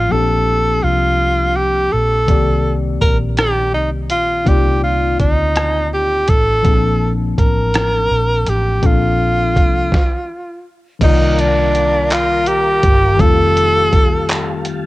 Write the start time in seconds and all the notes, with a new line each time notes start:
Already playing: F4
0.09 A#1 F3 A#3 C4 D4 A4
0.14 G4
0.84 C2 F4
1.56 G4
1.92 A#1 A4
2.26 C2 D#3 A#3 C4 D5, kick, closed hi-hat
2.31 G4
3.01 A#1 A#4, kick, closed hi-hat
3.37 G4, cross-stick, closed hi-hat
3.74 C2 D#4
4.10 A#1 F4, closed hi-hat
4.45 C2 A#3 C4 D#4 G4 D5, kick, closed hi-hat
4.50 F4
4.84 F4
5.20 D2 D#4, kick, closed hi-hat
5.56 cross-stick, closed hi-hat
5.94 G4
6.28 A1 A4, kick, closed hi-hat
6.62 A#1 F3 A#3 C4, kick, closed hi-hat
6.67 D4 G#4
6.74 A5
7.38 A1 A#4, kick, closed hi-hat
7.74 cross-stick, closed hi-hat
8.11 A#1
8.46 A1 G4, closed hi-hat
8.81 A#1 F3 A#3 C4 D4 A4, kick, closed hi-hat
8.86 F4
9.56 C2, kick, closed hi-hat
9.92 kick, snare
10.99 C2 D3 G3 A#3 A#4 D5 F5 A#5 D6, kick, closed hi-hat, crash
11.04 D#3 D#4 F4
11.39 D4, closed hi-hat
11.75 closed hi-hat
12.10 F4, clap, closed hi-hat
12.46 G4, closed hi-hat
12.83 G1, kick, closed hi-hat
13.17 F1 D#3 G3 A3 G4 A4 A5, kick, closed hi-hat
13.21 C4 F4
13.57 closed hi-hat
13.93 kick, closed hi-hat
14.29 clap, closed hi-hat
14.65 closed hi-hat